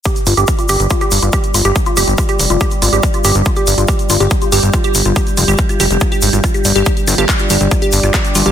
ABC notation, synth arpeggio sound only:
X:1
M:4/4
L:1/16
Q:1/4=141
K:Cm
V:1 name="Synth arpeggio sound"
G z F G z F G z F G z F G z F G | z F G z F G z F G z F G z F G z | F G z F G z F G z F G z F G z F | G z F G z F G z F G z F F G d G |
G z F G z F G z F G z F G z F G |]